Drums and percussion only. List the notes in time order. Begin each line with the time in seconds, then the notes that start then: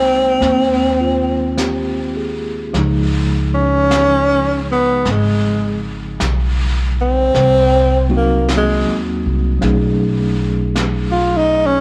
0.42 brush sweep, snare
1.58 brush sweep, snare, hi-hat pedal
2.74 brush sweep, snare
3.91 brush sweep, snare, hi-hat pedal
5.05 brush sweep, snare
6.20 brush sweep, snare, hi-hat pedal
7.35 brush sweep, snare
8.48 brush sweep, snare, hi-hat pedal
9.62 brush sweep, snare
10.76 brush sweep, snare, hi-hat pedal